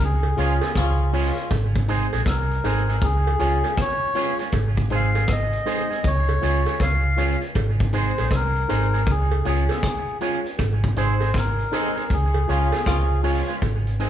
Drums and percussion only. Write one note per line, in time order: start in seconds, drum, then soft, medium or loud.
0.23 cowbell medium
0.37 closed hi-hat medium
0.61 cross-stick medium
0.61 closed hi-hat soft
0.61 cowbell medium
0.75 kick loud
0.75 cross-stick loud
0.75 closed hi-hat medium
1.13 open hi-hat medium
1.37 closed hi-hat medium
1.51 kick loud
1.51 closed hi-hat loud
1.51 cowbell medium
1.76 kick loud
1.88 closed hi-hat medium
2.13 closed hi-hat medium
2.13 cowbell medium
2.26 kick loud
2.26 cross-stick loud
2.26 closed hi-hat medium
2.51 closed hi-hat soft
2.65 closed hi-hat medium
2.65 cowbell medium
2.89 closed hi-hat medium
3.02 kick loud
3.02 closed hi-hat medium
3.27 cowbell medium
3.39 closed hi-hat medium
3.64 closed hi-hat soft
3.64 cowbell medium
3.77 kick loud
3.77 cross-stick loud
3.77 closed hi-hat medium
4.15 closed hi-hat medium
4.39 closed hi-hat medium
4.52 kick loud
4.52 closed hi-hat medium
4.52 cowbell medium
4.77 kick loud
4.90 closed hi-hat medium
5.15 closed hi-hat medium
5.15 cowbell medium
5.28 kick loud
5.28 cross-stick loud
5.28 closed hi-hat medium
5.53 closed hi-hat soft
5.66 closed hi-hat medium
5.66 cowbell medium
5.92 closed hi-hat medium
6.04 kick loud
6.04 closed hi-hat medium
6.29 cowbell medium
6.42 closed hi-hat medium
6.66 closed hi-hat soft
6.66 cowbell medium
6.80 kick loud
6.80 cross-stick loud
6.80 closed hi-hat medium
7.18 closed hi-hat medium
7.42 closed hi-hat medium
7.55 kick loud
7.55 closed hi-hat medium
7.55 cowbell medium
7.80 kick loud
7.93 closed hi-hat medium
8.18 closed hi-hat medium
8.18 cowbell medium
8.31 kick loud
8.31 cross-stick loud
8.31 closed hi-hat medium
8.56 closed hi-hat soft
8.70 closed hi-hat medium
8.70 cowbell medium
8.94 closed hi-hat soft
9.07 kick loud
9.07 closed hi-hat medium
9.31 cowbell medium
9.45 closed hi-hat medium
9.69 cross-stick medium
9.69 closed hi-hat medium
9.69 cowbell medium
9.83 kick loud
9.83 cross-stick loud
9.83 closed hi-hat loud
10.21 closed hi-hat medium
10.46 closed hi-hat medium
10.59 kick loud
10.59 closed hi-hat loud
10.59 cowbell medium
10.84 kick loud
10.96 closed hi-hat medium
11.20 closed hi-hat medium
11.20 cowbell medium
11.34 kick loud
11.34 cross-stick loud
11.34 closed hi-hat medium
11.59 closed hi-hat soft
11.73 closed hi-hat medium
11.73 cowbell medium
11.97 closed hi-hat medium
12.10 kick loud
12.10 closed hi-hat medium
12.34 cowbell medium
12.49 closed hi-hat medium
12.72 cross-stick medium
12.72 closed hi-hat soft
12.72 cowbell medium
12.86 kick loud
12.86 cross-stick loud
12.86 closed hi-hat medium
13.24 open hi-hat medium
13.49 closed hi-hat medium
13.62 kick loud
13.62 closed hi-hat medium
13.62 cowbell medium
13.87 closed hi-hat soft
14.00 closed hi-hat medium